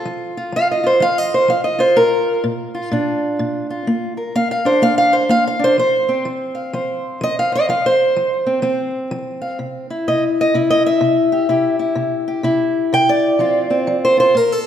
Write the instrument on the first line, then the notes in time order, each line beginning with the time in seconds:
steel-string acoustic guitar
Already playing: C4 F4
0.05 F3
0.37 F4
0.52 F3 F5
0.71 D#5
0.84 F4 C5
1.00 F3 F5
1.18 D#5
1.34 C5
1.48 F3 F5
1.64 D#5
1.79 F4 C5
1.96 A#2 A#4
2.44 A#2
2.75 F4
2.91 A#2 D4
3.39 A#2
3.70 F4
3.87 A#3
4.17 A#4
4.35 A#3 F5
4.51 F5
4.65 D4 C5
4.82 A#3 F5
4.98 F5
5.13 C5
5.29 A#3 F5
5.47 F5
5.59 D4
5.64 C5
5.78 F3 C5
6.09 C4
6.25 F3
6.55 F5
6.73 F3 C5
7.21 F3 D#5
7.39 F5
7.52 C5 D#5
7.69 F3 F5
7.86 C5
8.16 F3
8.46 C4
8.62 F3 C4
9.11 F3
9.42 F5
9.59 C3
9.90 E4
10.08 C3 D#5
10.41 D#5
10.54 C3 E4
10.70 D#5
10.86 E5
11.01 C3
11.32 G4
11.49 C3 E4 G4
11.79 E4
11.95 C3
12.28 G4
12.43 C3 E4
12.93 C3 G5
13.09 D5
13.39 F3 C4 F4
13.70 C4
13.87 F3
14.05 C5
14.18 F4 C5
14.35 A#2 A#4
14.52 A4